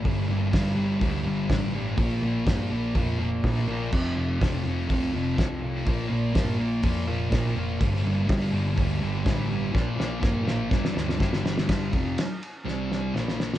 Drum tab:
CC |----------------|----------------|x---------------|----------------|
RD |----------------|----------------|----------------|----------------|
HH |o---o---o---o---|o---o---o---o---|----o---o---o---|o---o---o---o---|
SD |----o-------o---|----o-------o---|----o-------o---|----o-------o---|
BD |o---o---o---o---|o---o---o---o---|o---o---o---o---|o---o---o---o---|

CC |----------------|----------------|----------------|
RD |----------------|----------------|x-x-x-x---------|
HH |o---o---o---o---|----------------|----------------|
SD |----o-------o---|o-o-o-o-oooooooo|o---o---o-o-oooo|
BD |o---o---o---o---|o---o---o---o---|o-o-------------|